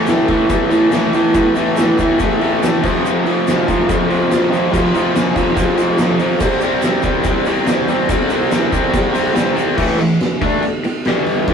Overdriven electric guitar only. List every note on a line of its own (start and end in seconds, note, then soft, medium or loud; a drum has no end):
0.08 0.26 A2 loud
0.08 0.28 E3 loud
0.08 0.29 A3 loud
0.27 0.47 A2 medium
0.27 0.49 E3 medium
0.27 0.51 A3 loud
0.48 0.68 A2 loud
0.48 0.70 E3 loud
0.48 0.71 A3 loud
0.69 0.89 A2 loud
0.69 0.90 E3 loud
0.69 0.92 A3 loud
0.90 1.12 A2 medium
0.90 1.13 E3 medium
0.90 1.15 A3 loud
1.13 1.33 A2 medium
1.13 1.34 E3 loud
1.13 1.36 A3 loud
1.35 1.54 A2 loud
1.35 1.55 E3 loud
1.35 1.57 A3 loud
1.55 1.75 A2 loud
1.55 1.76 E3 loud
1.55 1.78 A3 loud
1.76 1.97 A2 medium
1.76 1.98 E3 medium
1.76 2.00 A3 loud
1.98 2.17 A2 medium
1.98 2.19 E3 medium
1.98 2.20 A3 medium
2.18 2.38 A2 medium
2.18 2.40 E3 loud
2.18 2.41 A3 loud
2.39 2.60 A2 medium
2.39 2.61 E3 loud
2.39 2.63 A3 loud
2.61 2.82 A2 medium
2.61 2.82 E3 loud
2.61 6.14 A3 medium
2.82 3.03 F2 loud
2.82 3.03 C3 loud
2.82 3.05 F3 loud
3.04 3.25 F2 loud
3.04 3.25 C3 loud
3.04 3.27 F3 loud
3.25 3.46 F2 medium
3.25 3.47 C3 medium
3.25 3.49 F3 loud
3.47 3.67 F2 medium
3.47 3.67 C3 loud
3.47 3.69 F3 medium
3.67 3.87 F2 medium
3.67 3.88 C3 medium
3.67 3.90 F3 medium
3.89 4.07 F2 loud
3.89 4.08 C3 loud
3.89 4.09 F3 loud
4.08 4.28 F2 medium
4.08 4.29 C3 medium
4.08 4.30 F3 loud
4.29 4.49 F2 medium
4.29 4.50 C3 medium
4.29 4.51 F3 loud
4.50 4.70 F2 medium
4.50 4.70 C3 loud
4.50 4.71 F3 loud
4.71 4.92 F2 loud
4.71 4.94 C3 loud
4.71 4.94 F3 loud
4.93 5.13 F2 medium
4.93 5.14 C3 medium
4.93 5.15 F3 loud
5.14 5.33 F2 medium
5.14 5.35 C3 medium
5.14 5.36 F3 medium
5.35 5.54 F2 medium
5.35 5.55 C3 medium
5.35 5.56 F3 medium
5.56 5.75 F2 loud
5.56 5.76 C3 loud
5.56 5.77 F3 loud
5.76 5.96 F2 loud
5.76 5.98 C3 medium
5.76 5.98 F3 loud
5.98 6.18 F2 medium
5.98 6.19 C3 medium
5.98 6.20 F3 loud
6.19 6.39 F2 medium
6.19 6.38 C3 loud
6.19 6.40 F3 medium
6.39 6.61 C3 loud
6.39 6.62 G3 medium
6.39 6.63 C4 loud
6.61 6.82 C3 loud
6.61 6.83 G3 medium
6.61 6.84 C4 loud
6.83 7.02 C3 medium
6.83 7.03 G3 medium
6.83 7.04 C4 loud
7.02 7.23 C3 medium
7.02 7.24 G3 medium
7.02 7.26 C4 medium
7.24 7.44 C3 loud
7.24 7.46 G3 loud
7.24 7.47 C4 loud
7.45 7.65 C3 loud
7.45 7.66 G3 medium
7.45 7.68 C4 loud
7.66 7.86 C3 medium
7.66 7.87 G3 loud
7.66 7.89 C4 loud
7.87 8.08 C3 medium
7.87 8.08 G3 medium
7.87 8.09 C4 loud
8.09 8.28 C3 loud
8.09 8.30 G3 loud
8.09 8.31 C4 loud
8.30 8.50 C3 medium
8.30 8.51 G3 loud
8.30 8.52 C4 loud
8.51 8.70 C3 medium
8.51 8.71 G3 medium
8.51 8.72 C4 medium
8.71 8.91 C3 medium
8.71 8.92 G3 medium
8.71 8.93 C4 medium
8.92 9.12 C3 loud
8.92 9.13 G3 medium
8.92 9.13 C4 loud
9.13 9.32 C3 medium
9.13 9.33 G3 medium
9.13 9.34 C4 loud
9.33 9.53 C3 medium
9.33 9.54 G3 medium
9.33 9.55 C4 loud
9.54 9.75 C3 medium
9.54 9.77 G3 medium
9.54 9.77 C4 medium
9.76 9.97 A2 medium
9.76 9.98 E3 medium
9.76 9.99 A3 loud
9.98 10.16 A2 medium
9.98 10.16 E3 medium
10.41 10.62 D3 medium
10.41 10.63 A3 medium
10.41 10.63 D4 medium
10.63 muted overdriven electric guitar stroke medium
10.85 muted overdriven electric guitar stroke medium
11.07 11.48 G2 medium
11.07 11.48 D3 loud
11.07 11.49 G3 loud
11.48 11.54 A2 loud
11.48 11.54 E3 loud
11.48 11.54 A3 loud